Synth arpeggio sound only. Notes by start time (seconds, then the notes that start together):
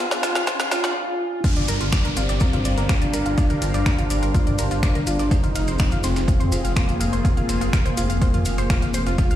0.11 F5
0.23 F4
0.36 F5
0.47 F4
0.60 F5
0.72 F4
0.84 F5
1.44 F4 F5
1.57 D5 D6
1.68 A#4 A#5
1.81 F4 F5
1.93 D5 D6
2.05 A#4 A#5
2.17 F4 F5
2.29 D5 D6
2.41 A#4 A#5
2.53 F4 F5
2.65 D5 D6
2.78 A#4 A#5
2.89 F4 F5
3.02 D5 D6
3.14 A#4 A#5
3.26 F4 F5
3.38 D5 D6
3.50 A#4 A#5
3.62 F4 F5
3.74 D5 D6
3.86 A#4 A#5
3.98 F4 F5
4.10 D5 D6
4.23 A#4 A#5
4.34 F4 F5
4.47 D5 D6
4.59 A#4 A#5
4.71 F4 F5
4.83 D5 D6
4.95 A#4 A#5
5.07 F4 F5
5.19 D5 D6
5.31 C5 C6
5.43 F4 F5
5.55 F5 F6
5.68 C5 C6
5.79 F4 F5
5.92 F5 F6
6.04 C5 C6
6.16 F4 F5
6.28 F5 F6
6.40 C5 C6
6.52 F4 F5
6.64 F5 F6
6.76 C5 C6
6.88 F4 F5
7.00 F5 F6
7.13 C5 C6
7.25 F4 F5
7.37 F5 F6
7.49 C5 C6
7.61 F4 F5
7.73 F5 F6
7.85 C5 C6
7.97 F4 F5
8.10 F5 F6
8.21 C5 C6
8.34 F4 F5
8.46 F5 F6
8.58 C5 C6
8.70 F4 F5
8.82 F5 F6
8.94 C5 C6
9.07 F4 F5
9.18 F4 F5
9.31 F5 F6